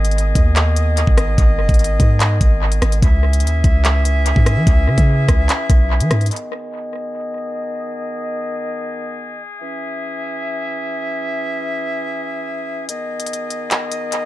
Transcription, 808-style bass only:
0, 0, Header, 1, 2, 480
1, 0, Start_track
1, 0, Key_signature, 5, "minor"
1, 0, Tempo, 410959
1, 1613, Time_signature, 4, 2, 24, 8
1, 16648, End_track
2, 0, Start_track
2, 0, Title_t, "808-style bass"
2, 0, Program_c, 0, 38
2, 0, Note_on_c, 0, 32, 117
2, 384, Note_off_c, 0, 32, 0
2, 413, Note_on_c, 0, 39, 110
2, 1220, Note_off_c, 0, 39, 0
2, 1254, Note_on_c, 0, 32, 97
2, 1599, Note_off_c, 0, 32, 0
2, 1613, Note_on_c, 0, 32, 116
2, 1854, Note_on_c, 0, 30, 102
2, 1871, Note_off_c, 0, 32, 0
2, 1967, Note_off_c, 0, 30, 0
2, 1974, Note_on_c, 0, 32, 101
2, 2319, Note_off_c, 0, 32, 0
2, 2333, Note_on_c, 0, 44, 105
2, 2794, Note_off_c, 0, 44, 0
2, 2813, Note_on_c, 0, 32, 105
2, 3274, Note_off_c, 0, 32, 0
2, 3293, Note_on_c, 0, 32, 109
2, 3524, Note_off_c, 0, 32, 0
2, 3533, Note_on_c, 0, 37, 116
2, 4013, Note_on_c, 0, 39, 100
2, 4030, Note_off_c, 0, 37, 0
2, 4241, Note_off_c, 0, 39, 0
2, 4253, Note_on_c, 0, 37, 109
2, 5060, Note_off_c, 0, 37, 0
2, 5094, Note_on_c, 0, 44, 108
2, 5333, Note_on_c, 0, 52, 99
2, 5351, Note_off_c, 0, 44, 0
2, 5447, Note_off_c, 0, 52, 0
2, 5453, Note_on_c, 0, 37, 114
2, 5693, Note_on_c, 0, 49, 104
2, 5710, Note_off_c, 0, 37, 0
2, 5807, Note_off_c, 0, 49, 0
2, 5814, Note_on_c, 0, 49, 103
2, 6159, Note_off_c, 0, 49, 0
2, 6173, Note_on_c, 0, 37, 105
2, 6404, Note_off_c, 0, 37, 0
2, 6653, Note_on_c, 0, 35, 103
2, 7013, Note_on_c, 0, 52, 100
2, 7031, Note_off_c, 0, 35, 0
2, 7127, Note_off_c, 0, 52, 0
2, 7133, Note_on_c, 0, 44, 103
2, 7364, Note_off_c, 0, 44, 0
2, 16648, End_track
0, 0, End_of_file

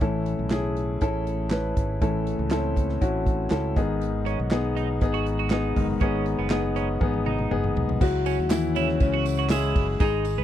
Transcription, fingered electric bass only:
0, 0, Header, 1, 2, 480
1, 0, Start_track
1, 0, Key_signature, 4, "minor"
1, 0, Tempo, 499584
1, 14, Time_signature, 4, 2, 24, 8
1, 10030, End_track
2, 0, Start_track
2, 0, Title_t, "Fingered electric bass"
2, 0, Program_c, 0, 33
2, 12, Note_on_c, 0, 33, 89
2, 348, Note_off_c, 0, 33, 0
2, 375, Note_on_c, 0, 35, 77
2, 945, Note_off_c, 0, 35, 0
2, 978, Note_on_c, 0, 33, 91
2, 1661, Note_off_c, 0, 33, 0
2, 1699, Note_on_c, 0, 32, 83
2, 1921, Note_off_c, 0, 32, 0
2, 1937, Note_on_c, 0, 33, 84
2, 2272, Note_off_c, 0, 33, 0
2, 2296, Note_on_c, 0, 37, 82
2, 2867, Note_off_c, 0, 37, 0
2, 2899, Note_on_c, 0, 33, 92
2, 3344, Note_off_c, 0, 33, 0
2, 3380, Note_on_c, 0, 37, 90
2, 3602, Note_off_c, 0, 37, 0
2, 3618, Note_on_c, 0, 32, 79
2, 4179, Note_off_c, 0, 32, 0
2, 4222, Note_on_c, 0, 35, 83
2, 4790, Note_off_c, 0, 35, 0
2, 4818, Note_on_c, 0, 32, 93
2, 5502, Note_off_c, 0, 32, 0
2, 5541, Note_on_c, 0, 30, 82
2, 5762, Note_off_c, 0, 30, 0
2, 5776, Note_on_c, 0, 32, 95
2, 6111, Note_off_c, 0, 32, 0
2, 6139, Note_on_c, 0, 30, 84
2, 6708, Note_off_c, 0, 30, 0
2, 6736, Note_on_c, 0, 32, 99
2, 7183, Note_off_c, 0, 32, 0
2, 7218, Note_on_c, 0, 30, 89
2, 7440, Note_off_c, 0, 30, 0
2, 7457, Note_on_c, 0, 35, 83
2, 7679, Note_off_c, 0, 35, 0
2, 7698, Note_on_c, 0, 37, 100
2, 8031, Note_off_c, 0, 37, 0
2, 8060, Note_on_c, 0, 39, 95
2, 8627, Note_off_c, 0, 39, 0
2, 8654, Note_on_c, 0, 37, 108
2, 9338, Note_off_c, 0, 37, 0
2, 9375, Note_on_c, 0, 30, 88
2, 9598, Note_off_c, 0, 30, 0
2, 9613, Note_on_c, 0, 32, 102
2, 9947, Note_off_c, 0, 32, 0
2, 9972, Note_on_c, 0, 36, 92
2, 10030, Note_off_c, 0, 36, 0
2, 10030, End_track
0, 0, End_of_file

